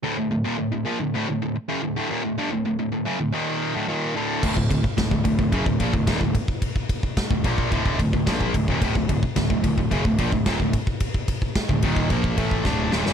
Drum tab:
CC |----------------|----------------|x---------------|----------------|
RD |----------------|----------------|--x-x-x-x-x-x-x-|x-x-x-x-x-x-x-x-|
SD |----------------|----------------|----o-------o---|----o-------o---|
BD |----------------|----------------|oooooooooooooooo|oooooooooooooooo|

CC |----------------|----------------|
RD |x-x-x-x-x-x-x-x-|x-x-x-x-x-x-----|
SD |----o-------o---|----o-------o-oo|
BD |oooooooooooooooo|ooooooooooooo---|